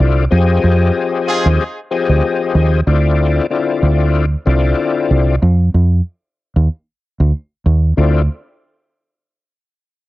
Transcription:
Already playing: D3 C4 E4 F4 D5
0.00 C2
0.31 F2 F3 C4 G4 G#4 D#5
0.64 F2
1.28 D#4 F4 G#4
1.46 D#2
1.91 F3 C4 G4 G#4 D#5
2.09 D2
2.55 D#2
2.87 D2 D3 C4 E4 F4 D5
3.50 D3 C4 E4 F4 D5
3.83 D2
4.46 C2 D3 C4 E4 F4 D5
5.11 C2
5.42 F2
5.74 F2
6.56 D#2
7.20 D2
7.66 D#2
7.97 D2 D3 C4 E4 F4 D5

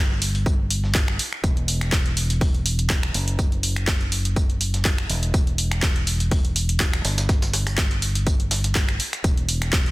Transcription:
Already playing: G1
0.22 open hi-hat, tambourine
0.35 closed hi-hat
0.46 kick, tambourine
0.70 open hi-hat, tambourine
0.84 snare
0.95 kick, snare, clap, tambourine
1.08 finger snap
1.19 open hi-hat, tambourine
1.33 finger snap
1.44 E1, kick, closed hi-hat, tambourine
1.57 closed hi-hat
1.68 open hi-hat, tambourine
1.81 finger snap, snare, closed hi-hat
1.92 kick, snare, clap, closed hi-hat, tambourine
2.06 closed hi-hat
2.17 open hi-hat, tambourine
2.30 closed hi-hat
2.41 kick, closed hi-hat, open hi-hat
2.54 closed hi-hat
2.66 open hi-hat, tambourine
2.79 closed hi-hat
2.90 kick, snare, clap, closed hi-hat, tambourine
3.03 finger snap, closed hi-hat
3.14 F#1, open hi-hat, tambourine
3.28 closed hi-hat
3.39 kick, closed hi-hat, tambourine
3.52 closed hi-hat
3.63 open hi-hat, tambourine
3.76 finger snap, closed hi-hat
3.87 kick, snare, clap, closed hi-hat, tambourine
4.01 closed hi-hat
4.12 open hi-hat
4.25 closed hi-hat
4.36 kick, closed hi-hat, tambourine
4.50 closed hi-hat
4.61 open hi-hat, tambourine
4.74 snare, closed hi-hat
4.85 kick, snare, clap, closed hi-hat, tambourine
4.98 finger snap, closed hi-hat
5.10 E1, open hi-hat, tambourine
5.23 closed hi-hat
5.34 kick, closed hi-hat, tambourine
5.47 closed hi-hat
5.58 open hi-hat, tambourine
5.71 finger snap, snare, closed hi-hat
5.82 kick, snare, clap, closed hi-hat, tambourine
5.96 closed hi-hat
6.07 open hi-hat, tambourine
6.20 closed hi-hat
6.31 kick, closed hi-hat, open hi-hat
6.45 closed hi-hat
6.56 open hi-hat, tambourine
6.69 closed hi-hat
6.80 kick, snare, clap, closed hi-hat, tambourine
6.93 finger snap, closed hi-hat
7.05 G1, snare, open hi-hat, tambourine
7.18 snare, closed hi-hat, tambourine
7.29 kick, snare, closed hi-hat, tambourine
7.42 snare, closed hi-hat, tambourine
7.53 snare, open hi-hat, tambourine
7.67 finger snap, snare, closed hi-hat, tambourine
7.78 kick, snare, clap, closed hi-hat, tambourine
7.91 closed hi-hat
8.02 open hi-hat, tambourine
8.15 closed hi-hat
8.27 kick, closed hi-hat, tambourine
8.40 closed hi-hat
8.51 snare, open hi-hat, tambourine
8.64 snare, closed hi-hat
8.75 kick, snare, clap, closed hi-hat, tambourine
8.89 finger snap, closed hi-hat
9.00 open hi-hat
9.13 finger snap, closed hi-hat
9.24 E1, kick, closed hi-hat, tambourine
9.37 closed hi-hat
9.49 open hi-hat, tambourine
9.62 finger snap, snare, closed hi-hat
9.73 kick, snare, clap, closed hi-hat, tambourine
9.86 closed hi-hat

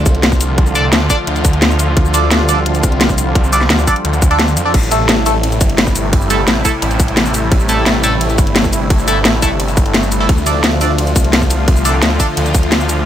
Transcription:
Already playing: D3 F3 A3 F4
0.06 C2, kick, closed hi-hat, shaker
0.15 closed hi-hat
0.23 snare, closed hi-hat
0.32 kick, shaker
0.41 closed hi-hat, shaker
0.58 kick, closed hi-hat
0.67 shaker
0.75 D4 A4 D5, closed hi-hat, shaker
0.93 D2, snare, closed hi-hat
1.10 D4 A4 D5, kick, closed hi-hat, shaker
1.27 D2, closed hi-hat
1.36 closed hi-hat, shaker
1.45 kick, closed hi-hat, shaker
1.53 closed hi-hat
1.62 snare, closed hi-hat
1.71 shaker
1.79 closed hi-hat, shaker
1.97 D2 G3, kick, closed hi-hat
2.05 shaker
2.14 D4 A4 D5, closed hi-hat, shaker
2.31 snare, closed hi-hat
2.49 D4 A4 D5, closed hi-hat, shaker
2.66 closed hi-hat
2.75 closed hi-hat, shaker
2.83 C2, kick, closed hi-hat, shaker
2.92 closed hi-hat
3.01 snare, closed hi-hat
3.09 kick, shaker
3.18 closed hi-hat, shaker
3.35 kick, closed hi-hat
3.44 shaker
3.53 D4 A4 D5, closed hi-hat, shaker
3.61 snare
3.70 D2, snare, closed hi-hat
3.79 shaker
3.87 D4 A4 D5, kick, closed hi-hat, shaker
3.96 closed hi-hat
4.05 D2, closed hi-hat
4.13 closed hi-hat, shaker
4.22 kick, closed hi-hat, shaker
4.31 D4 A4 D5, closed hi-hat
4.39 snare, closed hi-hat
4.48 shaker
4.57 F2, closed hi-hat, shaker
4.65 D4 A4 D5
4.74 A1 C3 G3 A3 E4, kick, closed hi-hat, crash, ride
4.83 shaker
4.91 A3 E4 A4, closed hi-hat, ride, shaker
5.09 snare, closed hi-hat, ride
5.26 A3 E4 A4, closed hi-hat, ride, shaker
5.43 closed hi-hat, ride
5.52 closed hi-hat, shaker
5.61 G1, kick, closed hi-hat, ride, shaker
5.70 closed hi-hat
5.78 snare, closed hi-hat, ride
5.87 kick, shaker
5.96 closed hi-hat, ride, shaker
6.13 kick, closed hi-hat, ride
6.22 shaker
6.30 A3 E4 A4, closed hi-hat, ride, shaker
6.48 A1, snare, closed hi-hat, ride
6.65 A3 E4 A4, kick, closed hi-hat, ride, shaker
6.82 A1, closed hi-hat, ride
6.91 closed hi-hat, shaker
7.00 kick, closed hi-hat, ride, shaker
7.08 closed hi-hat
7.17 snare, closed hi-hat, ride
7.26 shaker
7.34 closed hi-hat, ride, shaker
7.52 A1, kick, closed hi-hat, ride
7.60 shaker
7.69 A3 E4 A4, closed hi-hat, ride, shaker
7.86 snare, closed hi-hat, ride
8.04 A3 E4 A4, closed hi-hat, ride, shaker
8.21 closed hi-hat, ride
8.30 closed hi-hat, shaker
8.38 G1, kick, closed hi-hat, ride, shaker
8.47 closed hi-hat
8.56 snare, closed hi-hat, ride
8.64 kick, shaker
8.73 closed hi-hat, ride, shaker
8.90 kick, closed hi-hat, ride
8.99 shaker
9.08 A3 E4 A4, closed hi-hat, ride, shaker
9.25 A1, snare, closed hi-hat, ride
9.42 G1 A3 E4 A4, kick, closed hi-hat, ride, shaker
9.60 closed hi-hat, ride
9.68 closed hi-hat, shaker
9.77 kick, closed hi-hat, ride, shaker
9.86 closed hi-hat
9.94 snare, closed hi-hat, ride
10.03 shaker
10.12 closed hi-hat, ride, shaker
10.20 A3 E4 A4
10.29 D2 D3 F3 F4, kick, closed hi-hat, ride
10.38 shaker
10.46 D4 A4 D5, closed hi-hat, ride, shaker
10.64 snare, closed hi-hat, ride
10.81 D4 A4 D5, closed hi-hat, ride, shaker
10.98 closed hi-hat, ride
11.07 closed hi-hat, shaker
11.16 C2, kick, closed hi-hat, ride, shaker
11.24 closed hi-hat
11.33 snare, closed hi-hat, ride
11.42 kick, shaker
11.50 closed hi-hat, ride, shaker
11.68 kick, closed hi-hat, ride
11.76 shaker
11.85 D4 A4 D5, closed hi-hat, ride, shaker
12.02 D2, snare, closed hi-hat, ride
12.20 D4 A4 D5, kick, closed hi-hat, ride, shaker
12.37 D2, closed hi-hat, ride
12.46 closed hi-hat, shaker
12.54 kick, closed hi-hat, ride, shaker
12.63 closed hi-hat
12.72 snare, closed hi-hat, ride
12.80 shaker
12.89 closed hi-hat, ride, shaker

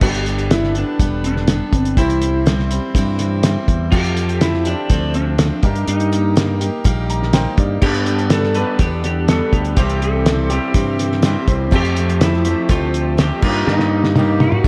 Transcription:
0.01 G1 G3 B3 D4 G4 A4 B4 D5, kick, crash
0.05 A5
0.14 closed hi-hat
0.26 closed hi-hat
0.38 closed hi-hat
0.50 G3 B3 D4 E4 A4, snare, closed hi-hat
0.63 snare
0.75 B3 D4 A4, closed hi-hat
0.99 E1 G3 B3 D4 A4, kick, closed hi-hat
1.24 D4, closed hi-hat
1.36 snare
1.48 G3 B3 D4 A4, snare, closed hi-hat
1.73 G1, kick, closed hi-hat
1.77 C4
1.85 closed hi-hat
1.97 C2 C3 E3 G3 C4 E4 G4 C5 E5 C6, kick, closed hi-hat
2.10 closed hi-hat
2.22 G3 C4 E4, closed hi-hat
2.46 E3 G3 C4 E4, snare, closed hi-hat
2.59 snare
2.71 G3 C4 E4, closed hi-hat
2.95 G2 C3 E3 G3 C4 E4, kick, closed hi-hat
3.19 snare, closed hi-hat
3.43 E3 G3 C4, snare, closed hi-hat
3.47 E4
3.68 E2, kick, closed hi-hat
3.91 F2 F3 A3 C4 F4 G4 A4 F5 A5, kick, crash
4.04 closed hi-hat
4.17 closed hi-hat
4.29 closed hi-hat
4.41 F3 A3 C4 E4, snare, closed hi-hat
4.45 G4
4.54 snare
4.65 C4 D4 G4, closed hi-hat
4.69 A3
4.90 D2 F3 A3 C4 G4, kick, closed hi-hat
5.14 D4, closed hi-hat
5.39 F3 A3 C4 G4, snare, closed hi-hat
5.63 G2 G3 A#3 D#4 G4 A#4 D#5 A#5, kick, closed hi-hat
5.76 closed hi-hat
5.88 G2 D#4, closed hi-hat
6.00 closed hi-hat
6.12 A#3 D#4 G4, closed hi-hat
6.36 G3 A#3 D#4 G4, snare, closed hi-hat
6.61 A#3 D#4 G4, closed hi-hat
6.84 A#1 G3 A#3 D#4 G4, kick, closed hi-hat
7.10 A#5, closed hi-hat
7.23 snare
7.33 G3 A#3 D#4 G4 C5 G5, snare, closed hi-hat
7.58 G2 D5, kick, closed hi-hat
7.82 G2 G3 B3 D4 G4 A4 B4 D5 A5, kick, crash
7.94 closed hi-hat
8.06 B3 D4 A4, closed hi-hat
8.19 closed hi-hat
8.30 G3 B3 D4 A4, snare, closed hi-hat
8.34 A4
8.43 snare
8.54 D4 A4 B4, closed hi-hat
8.59 G3 B3
8.79 E2 G3 B3 D4 G4 A4, kick, closed hi-hat
9.04 G4, snare, closed hi-hat
9.28 G3 B3 D4 A4, snare, closed hi-hat
9.53 D2 G4, kick, closed hi-hat
9.65 closed hi-hat
9.77 C2 C3 E3 G3 C4 E4 G4 C5 E5 C6, kick, closed hi-hat
9.89 closed hi-hat
10.02 A4, closed hi-hat
10.26 E3 G3 C4 G4, snare, closed hi-hat
10.50 C3 E3 G3 C4 G4, closed hi-hat
10.74 G2 C3 E3 G3 C4 G4, kick, closed hi-hat
10.99 snare, closed hi-hat
11.12 snare
11.23 C3 E3 G3 C4 G4, snare, closed hi-hat
11.48 C2 C4 E4 G4 C5, kick, closed hi-hat
11.71 F2 F3 A3 C4 G4 A4 G5 A5, kick, crash
11.76 G4
11.85 closed hi-hat
11.96 A3 C4 G4, closed hi-hat
12.09 closed hi-hat
12.21 F3 A3 C4 E4 G4, snare, closed hi-hat
12.33 snare
12.45 F3 A3 C4 G4, closed hi-hat
12.69 D2 F3 A3 C4 F4 G4, kick, closed hi-hat
12.94 closed hi-hat
13.17 F3 A3 C4 G4, snare, closed hi-hat
13.41 G2 G3 A#3 D#4 F4 G4 A#4 D#5 A#5, kick, crash
13.45 G3 A#3
13.67 G2 D#4, snare
13.79 snare
14.04 snare
14.16 G3 A#3 D#4 G4, high tom
14.40 A#3 D#4 F#4 G4, high tom
14.52 mid tom
14.64 D2 D3 E5 A5, kick

